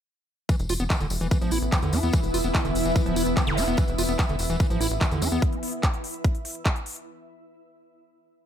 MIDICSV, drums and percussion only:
0, 0, Header, 1, 2, 480
1, 0, Start_track
1, 0, Tempo, 410959
1, 573, Time_signature, 4, 2, 24, 8
1, 9880, End_track
2, 0, Start_track
2, 0, Title_t, "Drums"
2, 573, Note_on_c, 9, 54, 55
2, 574, Note_on_c, 9, 36, 119
2, 574, Note_on_c, 9, 42, 70
2, 689, Note_off_c, 9, 54, 0
2, 690, Note_off_c, 9, 36, 0
2, 691, Note_off_c, 9, 42, 0
2, 694, Note_on_c, 9, 42, 42
2, 695, Note_on_c, 9, 54, 29
2, 809, Note_off_c, 9, 54, 0
2, 809, Note_on_c, 9, 54, 85
2, 810, Note_off_c, 9, 42, 0
2, 814, Note_on_c, 9, 46, 113
2, 926, Note_off_c, 9, 54, 0
2, 931, Note_off_c, 9, 46, 0
2, 933, Note_on_c, 9, 54, 38
2, 934, Note_on_c, 9, 42, 41
2, 1050, Note_off_c, 9, 54, 0
2, 1051, Note_off_c, 9, 42, 0
2, 1054, Note_on_c, 9, 36, 114
2, 1054, Note_on_c, 9, 39, 127
2, 1054, Note_on_c, 9, 42, 69
2, 1054, Note_on_c, 9, 54, 58
2, 1170, Note_off_c, 9, 36, 0
2, 1170, Note_off_c, 9, 39, 0
2, 1170, Note_off_c, 9, 42, 0
2, 1171, Note_off_c, 9, 54, 0
2, 1172, Note_on_c, 9, 54, 30
2, 1174, Note_on_c, 9, 42, 42
2, 1286, Note_off_c, 9, 54, 0
2, 1286, Note_on_c, 9, 54, 96
2, 1290, Note_off_c, 9, 42, 0
2, 1294, Note_on_c, 9, 46, 97
2, 1403, Note_off_c, 9, 54, 0
2, 1410, Note_off_c, 9, 46, 0
2, 1414, Note_on_c, 9, 42, 42
2, 1414, Note_on_c, 9, 54, 39
2, 1530, Note_off_c, 9, 42, 0
2, 1531, Note_off_c, 9, 54, 0
2, 1534, Note_on_c, 9, 36, 121
2, 1534, Note_on_c, 9, 42, 68
2, 1538, Note_on_c, 9, 54, 48
2, 1650, Note_off_c, 9, 42, 0
2, 1651, Note_off_c, 9, 36, 0
2, 1652, Note_off_c, 9, 54, 0
2, 1652, Note_on_c, 9, 54, 29
2, 1654, Note_on_c, 9, 42, 42
2, 1766, Note_off_c, 9, 54, 0
2, 1766, Note_on_c, 9, 54, 85
2, 1770, Note_off_c, 9, 42, 0
2, 1773, Note_on_c, 9, 46, 107
2, 1883, Note_off_c, 9, 54, 0
2, 1890, Note_off_c, 9, 46, 0
2, 1894, Note_on_c, 9, 42, 44
2, 1898, Note_on_c, 9, 54, 35
2, 2010, Note_off_c, 9, 42, 0
2, 2014, Note_off_c, 9, 54, 0
2, 2014, Note_on_c, 9, 36, 124
2, 2014, Note_on_c, 9, 39, 126
2, 2014, Note_on_c, 9, 42, 71
2, 2017, Note_on_c, 9, 54, 53
2, 2128, Note_off_c, 9, 54, 0
2, 2128, Note_on_c, 9, 54, 27
2, 2130, Note_off_c, 9, 36, 0
2, 2130, Note_off_c, 9, 39, 0
2, 2130, Note_off_c, 9, 42, 0
2, 2134, Note_on_c, 9, 42, 41
2, 2244, Note_off_c, 9, 54, 0
2, 2250, Note_on_c, 9, 54, 92
2, 2251, Note_off_c, 9, 42, 0
2, 2254, Note_on_c, 9, 46, 90
2, 2367, Note_off_c, 9, 54, 0
2, 2370, Note_off_c, 9, 46, 0
2, 2370, Note_on_c, 9, 54, 37
2, 2483, Note_off_c, 9, 54, 0
2, 2483, Note_on_c, 9, 54, 57
2, 2494, Note_on_c, 9, 36, 120
2, 2494, Note_on_c, 9, 42, 71
2, 2600, Note_off_c, 9, 54, 0
2, 2603, Note_on_c, 9, 54, 29
2, 2610, Note_off_c, 9, 36, 0
2, 2611, Note_off_c, 9, 42, 0
2, 2614, Note_on_c, 9, 42, 42
2, 2720, Note_off_c, 9, 54, 0
2, 2731, Note_off_c, 9, 42, 0
2, 2733, Note_on_c, 9, 46, 110
2, 2733, Note_on_c, 9, 54, 92
2, 2850, Note_off_c, 9, 46, 0
2, 2850, Note_off_c, 9, 54, 0
2, 2850, Note_on_c, 9, 54, 39
2, 2854, Note_on_c, 9, 42, 40
2, 2967, Note_off_c, 9, 54, 0
2, 2970, Note_off_c, 9, 42, 0
2, 2974, Note_on_c, 9, 36, 116
2, 2974, Note_on_c, 9, 39, 126
2, 2974, Note_on_c, 9, 42, 70
2, 2974, Note_on_c, 9, 54, 60
2, 3090, Note_off_c, 9, 36, 0
2, 3091, Note_off_c, 9, 39, 0
2, 3091, Note_off_c, 9, 42, 0
2, 3091, Note_off_c, 9, 54, 0
2, 3094, Note_on_c, 9, 42, 41
2, 3095, Note_on_c, 9, 54, 28
2, 3211, Note_off_c, 9, 42, 0
2, 3212, Note_off_c, 9, 54, 0
2, 3214, Note_on_c, 9, 46, 100
2, 3221, Note_on_c, 9, 54, 96
2, 3330, Note_off_c, 9, 46, 0
2, 3334, Note_on_c, 9, 42, 42
2, 3335, Note_off_c, 9, 54, 0
2, 3335, Note_on_c, 9, 54, 43
2, 3451, Note_off_c, 9, 42, 0
2, 3451, Note_off_c, 9, 54, 0
2, 3454, Note_on_c, 9, 36, 127
2, 3454, Note_on_c, 9, 42, 70
2, 3456, Note_on_c, 9, 54, 53
2, 3571, Note_off_c, 9, 36, 0
2, 3571, Note_off_c, 9, 42, 0
2, 3572, Note_off_c, 9, 54, 0
2, 3574, Note_on_c, 9, 42, 40
2, 3579, Note_on_c, 9, 54, 26
2, 3691, Note_off_c, 9, 42, 0
2, 3694, Note_off_c, 9, 54, 0
2, 3694, Note_on_c, 9, 46, 114
2, 3694, Note_on_c, 9, 54, 94
2, 3810, Note_off_c, 9, 46, 0
2, 3810, Note_off_c, 9, 54, 0
2, 3810, Note_on_c, 9, 54, 39
2, 3814, Note_on_c, 9, 42, 43
2, 3927, Note_off_c, 9, 54, 0
2, 3930, Note_off_c, 9, 42, 0
2, 3934, Note_on_c, 9, 36, 127
2, 3934, Note_on_c, 9, 39, 125
2, 3934, Note_on_c, 9, 42, 65
2, 3938, Note_on_c, 9, 54, 53
2, 4051, Note_off_c, 9, 36, 0
2, 4051, Note_off_c, 9, 39, 0
2, 4051, Note_off_c, 9, 42, 0
2, 4054, Note_off_c, 9, 54, 0
2, 4054, Note_on_c, 9, 42, 40
2, 4059, Note_on_c, 9, 54, 27
2, 4171, Note_off_c, 9, 42, 0
2, 4174, Note_on_c, 9, 46, 93
2, 4176, Note_off_c, 9, 54, 0
2, 4180, Note_on_c, 9, 54, 93
2, 4290, Note_off_c, 9, 46, 0
2, 4294, Note_off_c, 9, 54, 0
2, 4294, Note_on_c, 9, 42, 40
2, 4294, Note_on_c, 9, 54, 42
2, 4405, Note_off_c, 9, 54, 0
2, 4405, Note_on_c, 9, 54, 58
2, 4410, Note_off_c, 9, 42, 0
2, 4414, Note_on_c, 9, 36, 125
2, 4414, Note_on_c, 9, 42, 67
2, 4521, Note_off_c, 9, 54, 0
2, 4526, Note_on_c, 9, 54, 29
2, 4530, Note_off_c, 9, 36, 0
2, 4530, Note_off_c, 9, 42, 0
2, 4534, Note_on_c, 9, 42, 40
2, 4643, Note_off_c, 9, 54, 0
2, 4650, Note_off_c, 9, 42, 0
2, 4653, Note_on_c, 9, 54, 105
2, 4654, Note_on_c, 9, 46, 112
2, 4770, Note_off_c, 9, 46, 0
2, 4770, Note_off_c, 9, 54, 0
2, 4771, Note_on_c, 9, 54, 47
2, 4774, Note_on_c, 9, 42, 39
2, 4888, Note_off_c, 9, 54, 0
2, 4890, Note_off_c, 9, 42, 0
2, 4892, Note_on_c, 9, 54, 51
2, 4894, Note_on_c, 9, 36, 121
2, 4894, Note_on_c, 9, 39, 126
2, 4894, Note_on_c, 9, 42, 65
2, 5008, Note_off_c, 9, 54, 0
2, 5010, Note_off_c, 9, 36, 0
2, 5010, Note_off_c, 9, 39, 0
2, 5010, Note_off_c, 9, 42, 0
2, 5014, Note_on_c, 9, 42, 39
2, 5016, Note_on_c, 9, 54, 29
2, 5126, Note_off_c, 9, 54, 0
2, 5126, Note_on_c, 9, 54, 100
2, 5130, Note_off_c, 9, 42, 0
2, 5134, Note_on_c, 9, 46, 102
2, 5243, Note_off_c, 9, 54, 0
2, 5251, Note_off_c, 9, 46, 0
2, 5253, Note_on_c, 9, 54, 42
2, 5254, Note_on_c, 9, 42, 41
2, 5370, Note_off_c, 9, 54, 0
2, 5371, Note_off_c, 9, 42, 0
2, 5373, Note_on_c, 9, 54, 49
2, 5374, Note_on_c, 9, 36, 123
2, 5374, Note_on_c, 9, 42, 67
2, 5490, Note_off_c, 9, 36, 0
2, 5490, Note_off_c, 9, 54, 0
2, 5491, Note_off_c, 9, 42, 0
2, 5494, Note_on_c, 9, 42, 40
2, 5496, Note_on_c, 9, 54, 29
2, 5611, Note_off_c, 9, 42, 0
2, 5613, Note_off_c, 9, 54, 0
2, 5614, Note_on_c, 9, 46, 113
2, 5622, Note_on_c, 9, 54, 95
2, 5731, Note_off_c, 9, 46, 0
2, 5734, Note_on_c, 9, 42, 40
2, 5736, Note_off_c, 9, 54, 0
2, 5736, Note_on_c, 9, 54, 39
2, 5851, Note_off_c, 9, 42, 0
2, 5851, Note_off_c, 9, 54, 0
2, 5851, Note_on_c, 9, 54, 59
2, 5854, Note_on_c, 9, 36, 127
2, 5854, Note_on_c, 9, 39, 123
2, 5854, Note_on_c, 9, 42, 66
2, 5967, Note_off_c, 9, 54, 0
2, 5970, Note_off_c, 9, 36, 0
2, 5971, Note_off_c, 9, 39, 0
2, 5971, Note_off_c, 9, 42, 0
2, 5974, Note_on_c, 9, 42, 39
2, 5975, Note_on_c, 9, 54, 28
2, 6090, Note_off_c, 9, 42, 0
2, 6092, Note_off_c, 9, 54, 0
2, 6094, Note_on_c, 9, 46, 96
2, 6098, Note_on_c, 9, 54, 107
2, 6210, Note_off_c, 9, 46, 0
2, 6212, Note_off_c, 9, 54, 0
2, 6212, Note_on_c, 9, 54, 42
2, 6214, Note_on_c, 9, 42, 40
2, 6329, Note_off_c, 9, 54, 0
2, 6331, Note_off_c, 9, 42, 0
2, 6333, Note_on_c, 9, 36, 122
2, 6334, Note_on_c, 9, 42, 66
2, 6450, Note_off_c, 9, 36, 0
2, 6451, Note_off_c, 9, 42, 0
2, 6454, Note_on_c, 9, 42, 39
2, 6571, Note_off_c, 9, 42, 0
2, 6574, Note_on_c, 9, 46, 115
2, 6691, Note_off_c, 9, 46, 0
2, 6694, Note_on_c, 9, 42, 39
2, 6810, Note_off_c, 9, 42, 0
2, 6814, Note_on_c, 9, 36, 118
2, 6814, Note_on_c, 9, 39, 120
2, 6814, Note_on_c, 9, 42, 65
2, 6930, Note_off_c, 9, 36, 0
2, 6930, Note_off_c, 9, 39, 0
2, 6930, Note_off_c, 9, 42, 0
2, 6934, Note_on_c, 9, 42, 37
2, 7050, Note_off_c, 9, 42, 0
2, 7054, Note_on_c, 9, 46, 98
2, 7170, Note_off_c, 9, 46, 0
2, 7174, Note_on_c, 9, 42, 39
2, 7291, Note_off_c, 9, 42, 0
2, 7294, Note_on_c, 9, 36, 121
2, 7294, Note_on_c, 9, 42, 63
2, 7410, Note_off_c, 9, 36, 0
2, 7410, Note_off_c, 9, 42, 0
2, 7414, Note_on_c, 9, 42, 38
2, 7530, Note_off_c, 9, 42, 0
2, 7533, Note_on_c, 9, 46, 118
2, 7650, Note_off_c, 9, 46, 0
2, 7654, Note_on_c, 9, 42, 39
2, 7770, Note_off_c, 9, 42, 0
2, 7774, Note_on_c, 9, 36, 127
2, 7774, Note_on_c, 9, 39, 120
2, 7774, Note_on_c, 9, 42, 66
2, 7890, Note_off_c, 9, 36, 0
2, 7890, Note_off_c, 9, 39, 0
2, 7890, Note_off_c, 9, 42, 0
2, 7894, Note_on_c, 9, 42, 39
2, 8010, Note_off_c, 9, 42, 0
2, 8013, Note_on_c, 9, 46, 97
2, 8130, Note_off_c, 9, 46, 0
2, 8133, Note_on_c, 9, 42, 38
2, 8250, Note_off_c, 9, 42, 0
2, 9880, End_track
0, 0, End_of_file